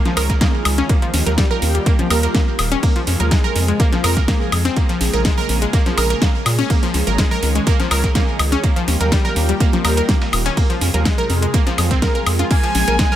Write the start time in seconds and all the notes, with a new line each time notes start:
Already playing: D#3 G#3 C#4 F4 G#4
0.05 F3, snare, closed hi-hat, high conga
0.17 C#2 A#4, open hi-hat, ride, high woodblock
0.30 A#4, kick, snare, closed hi-hat
0.41 A#3, kick, snare, closed hi-hat, ride, high conga
0.65 C#2, open hi-hat, ride, high woodblock
0.78 C#4, snare, closed hi-hat, high conga
0.89 G3 A#3 G4, kick, closed hi-hat, ride
1.02 F3, closed hi-hat
1.14 D#2, open hi-hat, ride, high conga
1.26 D#2 A#4, snare, closed hi-hat, low conga
1.38 G3, kick, snare, closed hi-hat, ride
1.51 A#4, snare, low conga
1.62 D#2, open hi-hat, ride, high conga
1.75 G3, closed hi-hat
1.86 A#3, kick, closed hi-hat, ride
1.99 F3, closed hi-hat, high conga, low conga
2.10 D#2 A#4, open hi-hat, ride, high woodblock
2.23 A#4, snare, closed hi-hat
2.35 A#3, kick, snare, closed hi-hat, ride, high conga
2.59 D#1, snare, open hi-hat, ride, high woodblock
2.72 C#4, closed hi-hat, high conga
2.83 C3 F3 G#3 A#3 G#4, kick, closed hi-hat, open hi-hat
2.96 F3, closed hi-hat
3.07 F2, open hi-hat, ride, high conga
3.20 D#2 A#4, snare, closed hi-hat, low conga
3.31 G#3, kick, snare, closed hi-hat, ride
3.44 A#4, ride, low conga
3.56 F2, open hi-hat, ride, high conga
3.68 G#3, closed hi-hat
3.80 A#3, kick, closed hi-hat, ride
3.92 F3, snare, closed hi-hat, high conga
4.04 F2 A#4, open hi-hat, ride, high woodblock
4.17 A#4, kick, snare, closed hi-hat
4.28 A#3, kick, snare, closed hi-hat, ride, high conga
4.52 F2, open hi-hat, ride, high woodblock
4.65 C4, snare, closed hi-hat, high conga
4.76 C#3 A#3, kick, closed hi-hat, ride
4.89 F3, closed hi-hat
5.01 A#1, open hi-hat, ride, high conga
5.13 A#1 A#4, snare, closed hi-hat, low conga
5.25 G#3, kick, snare, closed hi-hat, ride
5.38 A#4, snare, low conga
5.49 A#1, open hi-hat, ride, high conga
5.62 G#3, closed hi-hat
5.73 A#3, kick, closed hi-hat, ride
5.86 F3, closed hi-hat, high conga, low conga
5.97 A#1 A#4, open hi-hat, ride, high woodblock
6.10 A#4, snare, closed hi-hat
6.22 A#3, kick, snare, closed hi-hat, ride, high conga
6.46 A#2, snare, open hi-hat, ride, high woodblock
6.59 C#4, closed hi-hat, high conga
6.70 D#3 G#3 A#3 C#4, kick, closed hi-hat, open hi-hat
6.83 F3, closed hi-hat
6.94 C#2, open hi-hat, ride, high conga
7.07 G#1 A#4, snare, closed hi-hat, low conga
7.18 G#3, kick, snare, closed hi-hat, ride
7.31 A#4, ride, low conga
7.43 C#2, open hi-hat, ride, high conga
7.55 G#3, closed hi-hat
7.67 A#3, kick, closed hi-hat, ride
7.80 F3, snare, closed hi-hat, high conga
7.91 C#2 A#4, open hi-hat, ride, high woodblock
8.04 A#4, kick, snare, closed hi-hat
8.15 A#3, kick, snare, closed hi-hat, ride, high conga
8.39 C#2, open hi-hat, ride, high woodblock
8.52 C#4, snare, closed hi-hat, high conga
8.64 G3 A#3 F4 G4, kick, closed hi-hat, ride
8.76 F3, closed hi-hat
8.88 D#2, open hi-hat, ride, high conga
9.01 D#2 A#4, snare, closed hi-hat, low conga
9.12 G3, kick, snare, closed hi-hat, ride
9.25 A#4, snare, low conga
9.36 D#2, open hi-hat, ride, high conga
9.49 G3, closed hi-hat
9.60 A#3, kick, closed hi-hat, ride
9.73 F3, closed hi-hat, high conga, low conga
9.84 D#2 A#4, snare, open hi-hat, ride, high woodblock
9.97 A#4, closed hi-hat
10.09 A#3, kick, snare, closed hi-hat, ride, high conga
10.22 snare, ride
10.33 D#1, open hi-hat, high woodblock
10.46 C#4, snare, closed hi-hat, ride, high conga
10.57 C3 F3 G#3 A#3 G#4, kick, closed hi-hat, open hi-hat
10.70 F3, closed hi-hat
10.81 F2, open hi-hat, ride, high conga
10.94 D#2 A#4, snare, closed hi-hat, low conga
11.05 G#3, kick, snare, closed hi-hat, ride
11.18 A#4, closed hi-hat, ride, low conga
11.30 F2, open hi-hat, ride, high conga
11.42 G#3, closed hi-hat
11.54 A#3, kick, closed hi-hat, ride
11.67 F3, snare, closed hi-hat, high conga
11.78 F2, open hi-hat, ride, low conga, high woodblock
11.91 C4, kick, snare, closed hi-hat
12.02 A#4, kick, snare, closed hi-hat, ride, high conga
12.15 A#4, closed hi-hat
12.26 F2, open hi-hat, ride, high woodblock
12.39 F4, snare, closed hi-hat, high conga
12.51 C#3 G#3 A#3 F5 G#5 F6, kick, closed hi-hat, crash, ride
12.63 F3, closed hi-hat
12.75 A#1, open hi-hat, ride, high conga
12.88 A#1 A#4, snare, closed hi-hat, low conga
12.99 G#3, kick, snare, closed hi-hat, ride
13.12 A#4, snare, low conga